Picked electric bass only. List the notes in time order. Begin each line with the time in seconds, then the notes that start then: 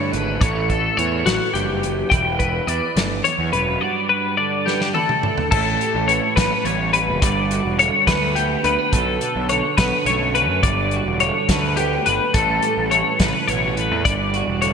0.00 G2
0.13 G#1
0.41 A1
0.98 E2
1.26 A1
1.54 F#1
2.12 E1
2.67 E2
2.96 G1
3.39 E2
3.53 E1
5.52 A1
5.95 A1
6.37 A1
6.65 A1
7.09 F#1
7.22 G1
7.65 E1
8.07 D2
8.64 D2
8.93 B1
9.36 B1
9.78 B1
10.06 B1
10.49 F#2
10.63 G1
11.06 E1
11.49 D2
12.07 G1
12.34 A1
12.78 A1
13.20 A1
13.48 A1
13.91 E2
14.06 G1
14.48 E1